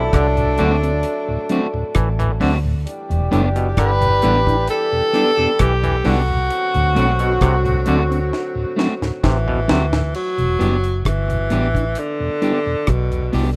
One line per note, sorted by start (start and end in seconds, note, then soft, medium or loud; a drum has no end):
0.00 0.12 B1 medium
0.00 2.37 F#3 medium
0.00 2.37 A3 medium
0.00 2.37 D4 medium
0.00 0.17 E4 loud
0.00 2.37 A4 medium
0.13 0.57 C2 loud
0.13 0.27 D3 medium
0.13 1.96 D4 medium
0.13 kick loud
0.13 cross-stick loud
0.13 closed hi-hat medium
0.37 0.47 D2 medium
0.37 0.47 A2 medium
0.37 muted clean electric guitar stroke soft
0.37 closed hi-hat medium
0.58 1.03 D2 medium
0.58 0.73 D3 medium
0.58 0.70 F#3 medium
0.58 0.74 A3 medium
0.58 0.70 C4 medium
0.58 0.75 C4 medium
0.58 0.70 D4 medium
0.58 0.75 F#4 loud
0.58 closed hi-hat medium
0.82 0.92 C4 medium
0.82 0.93 D4 medium
0.82 closed hi-hat medium
1.03 closed hi-hat loud
1.29 1.39 D2 medium
1.29 1.38 A2 medium
1.49 1.61 F#3 medium
1.49 1.66 A3 medium
1.49 1.61 C4 medium
1.49 1.66 C4 medium
1.49 1.61 D4 medium
1.49 1.67 F#4 loud
1.49 closed hi-hat medium
1.74 1.84 D2 medium
1.74 1.84 A2 medium
1.95 2.39 A1 loud
1.95 2.09 E3 medium
1.95 kick loud
1.95 cross-stick loud
1.95 closed hi-hat loud
2.19 2.29 D2 medium
2.19 2.29 A2 medium
2.19 2.32 E3 medium
2.19 closed hi-hat medium
2.40 2.85 D2 medium
2.40 2.55 D3 medium
2.40 2.52 F#3 medium
2.40 2.56 A3 medium
2.40 2.52 C4 medium
2.40 2.57 C4 medium
2.40 2.52 D4 medium
2.40 2.57 F#4 medium
2.40 open hi-hat medium
2.65 2.75 D2 medium
2.65 2.75 A2 medium
2.86 6.01 E3 medium
2.86 6.01 G3 medium
2.86 6.00 D4 medium
2.86 6.01 G4 medium
2.86 closed hi-hat loud
3.10 3.31 E1 medium
3.10 3.20 E2 medium
3.10 3.20 B2 medium
3.10 closed hi-hat soft
3.31 3.76 F#1 medium
3.31 3.46 A2 medium
3.31 3.43 G3 medium
3.31 3.47 B3 medium
3.31 3.43 D4 medium
3.31 3.48 D4 loud
3.31 3.43 E4 medium
3.31 3.48 G4 medium
3.31 closed hi-hat medium
3.56 3.68 B2 medium
3.56 closed hi-hat medium
3.77 4.21 G1 medium
3.77 3.91 D3 medium
3.77 4.65 B4 loud
3.77 kick loud
3.77 cross-stick loud
3.77 closed hi-hat medium
4.01 4.11 E2 medium
4.01 4.11 B2 medium
4.01 muted clean electric guitar stroke soft
4.01 closed hi-hat medium
4.22 4.67 A1 medium
4.22 4.37 D3 medium
4.22 4.34 G3 medium
4.22 4.38 B3 medium
4.22 4.34 D4 medium
4.22 4.39 D4 medium
4.22 4.34 E4 medium
4.22 4.39 G4 loud
4.22 cross-stick medium
4.22 closed hi-hat medium
4.47 4.57 D4 medium
4.47 4.57 E4 medium
4.47 kick medium
4.47 closed hi-hat medium
4.68 5.63 A4 loud
4.68 closed hi-hat loud
4.92 5.02 E2 medium
4.92 5.02 B2 medium
5.13 5.25 G3 medium
5.13 5.29 B3 medium
5.13 5.25 D4 medium
5.13 5.30 D4 medium
5.13 5.25 E4 medium
5.13 5.30 G4 medium
5.13 cross-stick medium
5.13 closed hi-hat medium
5.37 5.48 E2 medium
5.37 5.48 B2 medium
5.37 5.50 B3 medium
5.37 5.49 D4 medium
5.37 5.49 G4 medium
5.59 6.03 B1 medium
5.59 5.73 E3 medium
5.59 6.09 G4 medium
5.59 kick loud
5.59 cross-stick loud
5.59 closed hi-hat loud
5.83 5.93 E2 medium
5.83 5.93 B2 medium
5.83 5.96 E3 medium
5.83 closed hi-hat soft
6.04 6.49 C2 medium
6.04 6.19 D3 medium
6.04 6.16 G3 medium
6.04 6.20 B3 medium
6.04 6.21 D4 loud
6.04 6.16 D4 medium
6.04 6.16 E4 medium
6.04 8.79 F#4 loud
6.04 6.21 G4 medium
6.04 open hi-hat medium
6.29 6.39 E2 medium
6.29 6.39 B2 medium
6.51 9.65 D3 medium
6.51 9.65 F#3 medium
6.51 9.65 C4 medium
6.51 9.65 F#4 medium
6.51 closed hi-hat loud
6.74 6.84 D2 medium
6.74 6.96 D2 loud
6.74 6.84 A2 medium
6.74 closed hi-hat medium
6.95 7.40 B1 medium
6.95 7.10 A2 medium
6.95 7.07 F#3 medium
6.95 7.11 A3 medium
6.95 7.11 C4 medium
6.95 7.07 C4 medium
6.95 7.07 D4 medium
6.95 7.12 F#4 medium
6.95 closed hi-hat medium
7.19 7.32 B2 medium
7.19 closed hi-hat medium
7.41 7.85 C2 loud
7.41 7.55 C3 loud
7.41 kick loud
7.41 cross-stick loud
7.41 closed hi-hat medium
7.65 7.75 D2 medium
7.65 7.75 A2 medium
7.65 muted clean electric guitar stroke soft
7.65 closed hi-hat medium
7.86 8.31 D2 medium
7.86 8.01 D3 medium
7.86 7.98 F#3 medium
7.86 8.02 A3 medium
7.86 7.98 C4 medium
7.86 8.03 C4 medium
7.86 7.98 D4 medium
7.86 8.03 F#4 loud
7.86 closed hi-hat medium
8.10 8.20 C4 medium
8.10 8.21 D4 medium
8.10 closed hi-hat medium
8.33 snare medium
8.55 8.66 D2 medium
8.55 8.66 A2 medium
8.76 8.88 F#3 medium
8.76 8.93 A3 medium
8.76 8.88 C4 medium
8.76 8.93 C4 medium
8.76 8.89 D4 medium
8.76 8.94 F#4 loud
8.76 snare medium
9.02 9.12 D2 medium
9.02 9.12 A2 medium
9.02 snare medium
9.24 9.67 A1 loud
9.24 9.37 C3 medium
9.24 10.11 E3 medium
9.24 kick loud
9.24 snare loud
9.47 9.57 D2 medium
9.47 9.57 A2 medium
9.47 9.60 B2 medium
9.68 10.13 D2 medium
9.68 9.83 C3 medium
9.68 9.79 F#3 medium
9.68 9.84 A3 medium
9.68 9.79 C4 medium
9.68 9.85 C4 medium
9.68 9.79 D4 medium
9.68 9.85 F#4 medium
9.68 snare loud
9.92 10.02 D2 medium
9.92 10.02 A2 medium
9.92 snare medium
10.14 11.02 F#3 loud
10.14 crash medium
10.38 10.59 E1 medium
10.38 10.48 E2 medium
10.38 10.48 B2 medium
10.38 closed hi-hat soft
10.59 11.04 F#1 medium
10.59 10.70 G3 medium
10.59 10.75 B3 medium
10.59 10.70 D4 medium
10.59 10.75 D4 loud
10.59 10.70 E4 medium
10.59 10.76 G4 medium
10.59 closed hi-hat medium
10.84 closed hi-hat medium
11.05 11.49 G1 medium
11.05 12.00 E3 medium
11.05 kick loud
11.05 cross-stick loud
11.05 closed hi-hat medium
11.28 11.39 E2 medium
11.28 11.39 B2 medium
11.28 muted clean electric guitar stroke soft
11.28 closed hi-hat medium
11.50 11.95 A1 medium
11.50 11.62 G3 medium
11.50 11.66 B3 medium
11.50 11.62 D4 medium
11.50 11.67 D4 medium
11.50 11.62 E4 medium
11.50 11.67 G4 medium
11.50 cross-stick medium
11.50 closed hi-hat medium
11.75 11.85 D4 medium
11.75 11.85 E4 medium
11.75 kick medium
11.75 closed hi-hat medium
11.95 12.91 D3 loud
11.95 closed hi-hat medium
12.20 12.30 E2 medium
12.20 12.30 B2 medium
12.42 12.53 G3 medium
12.42 12.57 B3 medium
12.42 12.53 D4 medium
12.42 12.58 D4 medium
12.42 12.53 E4 medium
12.42 12.58 G4 medium
12.42 closed hi-hat medium
12.66 12.76 E2 medium
12.66 12.76 B2 medium
12.87 13.31 B1 medium
12.87 13.54 B2 medium
12.87 kick loud
12.87 cross-stick loud
12.87 closed hi-hat loud
13.11 13.21 E2 medium
13.11 13.21 B2 medium
13.11 closed hi-hat soft
13.33 13.56 C2 medium
13.33 13.44 G3 medium
13.33 13.48 B3 medium
13.33 13.44 D4 medium
13.33 13.49 D4 medium
13.33 13.44 E4 medium
13.33 13.49 G4 loud
13.33 open hi-hat medium